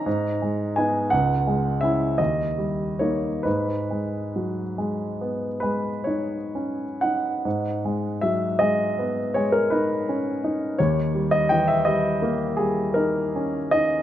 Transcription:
<<
  \new Staff \with { instrumentName = "Grand piano" } { \time 9/8 \key gis \minor \tempo 4. = 54 ais''4 gis''8 fis''4 e''8 dis''4 cis''8 | b'2~ b'8 b'8 cis''4 fis''8~ | fis''4 e''8 dis''4 cis''16 ais'16 b'4. | cis''8. dis''16 g''16 e''16 dis''4 gis'8 ais'4 dis''8 | }
  \new Staff \with { instrumentName = "Grand piano" } { \clef bass \time 9/8 \key gis \minor gis,8 gis8 <b dis'>8 cis,8 gis8 <cis' e'>8 dis,8 g8 <ais dis'>8 | gis,8 gis8 fis8 gis8 b8 gis8 dis'8 cis'8 dis'8 | gis,8 gis8 fis8 gis8 b8 gis8 dis'8 cis'8 dis'8 | dis,8 g8 e8 g8 ais8 g8 dis'8 cis'8 dis'8 | }
>>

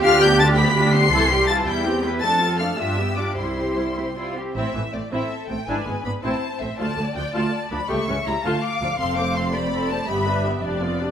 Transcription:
<<
  \new Staff \with { instrumentName = "Violin section" } { \time 6/8 \key c \major \tempo 4. = 109 f'''8 g'''8 a'''8 b'''4 c''''8~ | c''''4 a'''8 g'''4 r8 | a'''4 f'''8 e'''4 d'''8 | c'''2~ c'''8 r8 |
\key a \minor e''4 d''8 e''4 g''8 | gis''4 b''8 a''4 e''8 | a''4 g''8 a''4 b''8 | cis'''4 bes''8 a''8 d'''4 |
\key g \mixolydian c'''8 d'''8 c'''8 b''4 a''8 | b''4 r2 | }
  \new Staff \with { instrumentName = "Violin section" } { \time 6/8 \key c \major f''8 g''8 a''8 b''4 c'''8~ | c'''4 a''8 g''4 r8 | a''4 f''8 e''4 d''8 | c''2~ c''8 r8 |
\key a \minor r4. a'4. | b'4. c''4. | d''2. | e''4. f''4.~ |
\key g \mixolydian f''4. d''4. | e''4. d''4. | }
  \new Staff \with { instrumentName = "Viola section" } { \time 6/8 \key c \major <d' f'>8 <b d'>8 <d' f'>8 <b d'>8 <d' f'>8 <b d'>8 | <e e'>8 <g g'>8 <e e'>8 <g e'>8 <c' g'>8 <g e'>8 | <a d'>8 <c' f'>8 <a d'>8 <d' f'>8 <b g'>8 <d' f'>8 | <g e'>8 <c' g'>8 <g e'>8 <c' g'>8 <g e'>8 <c' g'>8 |
\key a \minor <c' e'>8 <e a>8 <a c'>8 <c' e'>8 r8 <a c'>8 | <d' e'>8 <gis b>8 <b d'>8 <c' e'>8 r8 <a c'>8 | <a f'>8 <d a>8 <f d'>8 <a f'>8 r8 <f d'>8 | <a g'>8 <e cis'>8 <g e'>8 <a f'>8 r8 <f d'>8 |
\key g \mixolydian <c' a'>8 <a c''>8 <c' a'>8 <a c''>8 <c' a'>8 <a c''>8 | <b g'>8 <d' b'>8 <b g'>8 <d' g'>8 <b f'>8 <d' g'>8 | }
  \new Staff \with { instrumentName = "Cello section" } { \clef bass \time 6/8 \key c \major g'2. | a'8 g'8 f'8 e'8 g'8 b'8 | a'4. g'4. | e'4. e'8 f'8 g'8 |
\key a \minor a,8 a,8 a,8 a,8 r8 a,8 | gis,8 gis,8 gis,8 a,8 r8 a,8 | d,8 d,8 d,8 d,8 r8 d,8 | cis,8 cis,8 cis,8 d,8 r8 d,8 |
\key g \mixolydian f,2. | g,4. f,4. | }
  \new Staff \with { instrumentName = "Double bass section" } { \clef bass \time 6/8 \key c \major d,2. | c,4. e,4. | f,4. g,4. | c,2~ c,8 r8 |
\key a \minor a,,8 a,,8 a,,8 a,,8 r8 a,,8 | gis,,8 gis,,8 gis,,8 a,,8 r8 a,,8 | d,8 d,8 d,8 d,8 r8 d,8 | cis,8 cis,8 cis,8 d,8 r8 d,8 |
\key g \mixolydian f,,2. | g,,4. f,,4. | }
>>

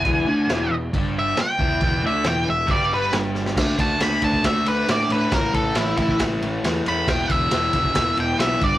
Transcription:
<<
  \new Staff \with { instrumentName = "Lead electric guitar" } { \time 4/4 \key d \lydian \tempo 4 = 137 gis''4. r4 e''8 g''4~ | g''8 e''8 g''8 e''8 d''8 b'8 r4 | r8 a''8 b''8 a''8 e''8 b'8 d''8 b'8 | ais'8 a'8 e'8 e'8 r4. b''8 |
g''8 e''2 g''8 e''8 d''8 | }
  \new Staff \with { instrumentName = "Overdriven electric guitar" } { \clef bass \time 4/4 \key d \lydian <e, e>8 <d d'>8 <e, e>8 e,8 <g, g>4 r8 <e, e>8 | <e, e>8 <d d'>8 <e, e>8 e,8 <g, g>4 <g, g>4 | <d a d'>8 <d a d'>8 <d a d'>8 <d a d'>8 <d a d'>8 <d a d'>8 <d a d'>8 <d a d'>8 | <a, e a>8 <a, e a>8 <a, e a>8 <a, e a>8 <a, e a>8 <a, e a>8 <a, e a>8 <a, e a>8 |
<e, b, e>8 <e, b, e>8 <e, b, e>8 <e, b, e>8 <e, b, e>8 <e, b, e>8 <e, b, e>8 <g, d g>8 | }
  \new Staff \with { instrumentName = "Picked electric bass" } { \clef bass \time 4/4 \key d \lydian e,,8 d,8 e,,8 e,,8 g,,4 r8 e,,8 | e,,8 d,8 e,,8 e,,8 g,,4 g,,4 | d,8 d,8 d,8 d,8 d,8 d,8 a,8 a,8 | a,,8 a,,8 a,,8 a,,8 a,,8 a,,8 e,8 e,8 |
e,,8 e,,8 e,,8 e,,8 e,,8 e,,8 b,,8 g,,8 | }
  \new DrumStaff \with { instrumentName = "Drums" } \drummode { \time 4/4 <cymc bd>4 <cymc sn>4 <cymc bd>4 <cymc sn>8 bd8 | <cymc bd>4 <cymc sn>4 <cymc bd>4 <cymc sn>8 sn16 sn16 | <cymc bd sn>8 <bd cymr>8 <cymr sn>8 <bd cymr>16 bd16 <bd cymr sn>8 cymr8 <cymr sn>8 cymr8 | <bd cymr sn>8 <bd cymr>8 <cymr sn>8 <bd cymr>16 bd16 <bd cymr sn>8 cymr8 <cymr sn>8 cymr8 |
<cymc bd sn>8 <bd cymr>8 <cymr sn>8 <bd cymr>16 bd16 <bd cymr sn>8 cymr8 <cymr sn>8 <bd cymr>8 | }
>>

